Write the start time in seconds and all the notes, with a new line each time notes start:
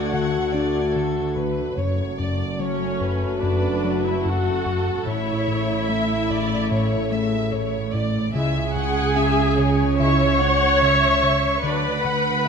Already playing: D2 D3 A3 F#4 D5 F#5 C#6 E6 G#6
0.11 D3 F#5
0.54 D4 D5
0.93 D3 A4
1.35 D3 B4
1.77 F#1 F#2 A3 F#4 C#5
2.18 F#2 D5
2.60 F#3 C#4 C#5
3.01 F#2 B4
3.43 F#2 D4 D5
3.84 F#3
4.04 E4 E5
4.25 F#2 F#4 A4 F#5
4.66 F#2
5.07 A1 A2 C#3 A3 E4 C#5 E5
5.48 A2
5.88 A3 E5
6.30 A2 D5
6.72 A2 C#5
7.12 A3 E5
7.52 A2 C#5
7.93 A2 D5
8.34 C#2 C#3 G#3 E4 G#4 E5 G#5
8.75 C#3 F#5
9.16 C#4 E5
9.58 C#3 C#5
10.00 C#3 G#3 E4 C#5 E5 C#6
10.41 C#4 F#5
10.82 C#3 E5
11.23 C#3
11.63 D2 D3 F#3 D4 B4 D5 B5
12.03 D3 F#5
12.45 E5